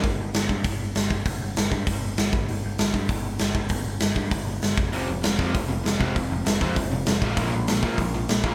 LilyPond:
<<
  \new Staff \with { instrumentName = "Overdriven electric guitar" } { \clef bass \time 4/4 \key f \lydian \tempo 4 = 196 r1 | r1 | r1 | r1 |
<f, c f>8 <f, c>8 <f, c>8 <f, c f>8 <f, c>8 <f, c>8 <f, c>8 <f, c f>8 | <f, c>8 <f, c>8 <f, c>8 <f, c f>8 <f, c>8 <f, c>8 <f, c>8 <f, c f>8 | <bes, f bes>8 <bes, f>8 <bes, f>8 <bes, f bes>8 <bes, f>8 <bes, f>8 <bes, f>8 <bes, f bes>8 | }
  \new Staff \with { instrumentName = "Overdriven electric guitar" } { \clef bass \time 4/4 \key f \lydian r1 | r1 | r1 | r1 |
<f, c f>8 <f, c>8 <f, c>8 <f, c f>8 <f, c>8 <f, c>8 <f, c>8 <f, c f>8 | <f, c>8 <f, c>8 <f, c>8 <f, c f>8 <f, c>8 <f, c>8 <f, c>8 <f, c f>8 | <bes, f bes>8 <bes, f>8 <bes, f>8 <bes, f bes>8 <bes, f>8 <bes, f>8 <bes, f>8 <bes, f bes>8 | }
  \new Staff \with { instrumentName = "Picked electric bass" } { \clef bass \time 4/4 \key f \lydian g,,8 g,,8 g,,8 g,8 g,,4 g,,8 g,,8 | g,,8 g,,8 g,,8 g,8 g,,4 g,,8 g,,8 | g,,8 g,,8 g,,8 g,8 g,,4 g,,8 g,,8 | g,,8 g,,8 g,,8 g,8 g,,4 g,,8 f,,8 |
f,,8 f,,8 f,,8 f,8 f,,4 f,,8 f,,8 | f,,8 f,,8 f,,8 f,8 f,,4 f,,8 a,,8 | bes,,8 bes,,8 bes,,8 bes,8 bes,,4 bes,,8 bes,,8 | }
  \new DrumStaff \with { instrumentName = "Drums" } \drummode { \time 4/4 <hho bd>4 <hho sn>8 bd8 <hho bd>4 <hho sn>8 bd8 | <hho bd>4 <hho sn>8 bd8 <hho bd>4 <hho sn>8 bd8 | hho4 <hho sn>8 bd8 <hho bd>4 <hho sn>8 bd8 | <hho bd>4 <hho sn>8 bd8 <hho bd>4 <hho sn>8 bd8 |
hho4 <hho sn>8 bd8 <hho bd>4 <hho sn>8 bd8 | <hho bd>4 <hho sn>8 bd8 <hho bd>4 <hho sn>8 bd8 | <hho bd>4 <hho sn>8 bd8 <hho bd>4 <hho sn>8 bd8 | }
>>